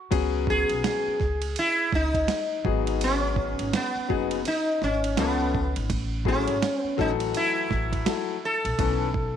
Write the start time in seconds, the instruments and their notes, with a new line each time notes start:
0.11 upright bass C#2, grand piano F#3 B3 C#4 G#4, kick, ride
0.47 sitar G#4, kick
0.70 upright bass B1, ride
0.84 snare, hi-hat pedal, ride
1.06 muted upright bass stroke
1.20 upright bass C#2, kick, snare
1.42 ride
1.56 sitar E4, ride
1.93 upright bass C#2, sitar D#4, kick, snare
2.14 kick, ride
2.28 snare, hi-hat pedal, ride
2.64 upright bass G#1, grand piano F#3 B3 D#4 G#4, kick
2.87 ride
3.01 sitar C#4, ride
3.36 kick
3.59 upright bass G#1, ride
3.73 sitar B3, snare, hi-hat pedal, ride
3.95 muted upright bass stroke
4.08 upright bass F#1, grand piano F#3 B3 D#4 G#4, kick
4.31 ride
4.45 sitar D#4, ride
4.82 upright bass G#1, sitar C#4, snare
5.04 ride
5.17 upright bass C#2, grand piano F3 B3 C#4 A4, sitar B3, snare, hi-hat pedal, ride
5.55 kick
5.76 upright bass G#1, ride
5.90 upright bass A1, kick, ride
6.25 grand piano F#3 A3 E4 G#4, sitar C#4, kick
6.48 upright bass G#1, ride
6.62 snare, hi-hat pedal, ride
6.82 sitar B3, muted upright bass stroke
6.97 upright bass A1, grand piano E3 F#3 A3 A4, sitar D#4, kick, snare
7.20 ride
7.35 sitar E4, ride
7.71 upright bass A1, kick, snare
7.93 kick, ride
8.06 grand piano F#3 A3 E4 A4, snare, hi-hat pedal, ride
8.45 sitar A4
8.65 upright bass A#1, ride
8.78 upright bass B1, grand piano E3 B3 C#4 A4, kick, ride
9.14 kick